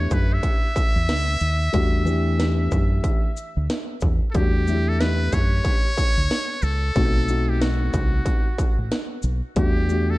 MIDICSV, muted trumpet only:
0, 0, Header, 1, 2, 480
1, 0, Start_track
1, 0, Tempo, 652174
1, 1279, Time_signature, 4, 2, 24, 8
1, 7492, End_track
2, 0, Start_track
2, 0, Title_t, "Muted trumpet"
2, 0, Program_c, 0, 59
2, 0, Note_on_c, 0, 73, 95
2, 97, Note_on_c, 0, 71, 85
2, 108, Note_off_c, 0, 73, 0
2, 247, Note_on_c, 0, 76, 105
2, 258, Note_off_c, 0, 71, 0
2, 2730, Note_off_c, 0, 76, 0
2, 3170, Note_on_c, 0, 69, 63
2, 3206, Note_on_c, 0, 67, 88
2, 3217, Note_off_c, 0, 69, 0
2, 3597, Note_on_c, 0, 69, 83
2, 3608, Note_off_c, 0, 67, 0
2, 3685, Note_on_c, 0, 71, 92
2, 3696, Note_off_c, 0, 69, 0
2, 3927, Note_on_c, 0, 73, 108
2, 3938, Note_off_c, 0, 71, 0
2, 4880, Note_on_c, 0, 69, 98
2, 4891, Note_off_c, 0, 73, 0
2, 5514, Note_on_c, 0, 67, 81
2, 5525, Note_off_c, 0, 69, 0
2, 5604, Note_on_c, 0, 66, 80
2, 5616, Note_off_c, 0, 67, 0
2, 6562, Note_off_c, 0, 66, 0
2, 7052, Note_on_c, 0, 67, 94
2, 7436, Note_on_c, 0, 69, 82
2, 7447, Note_off_c, 0, 67, 0
2, 7492, Note_off_c, 0, 69, 0
2, 7492, End_track
0, 0, End_of_file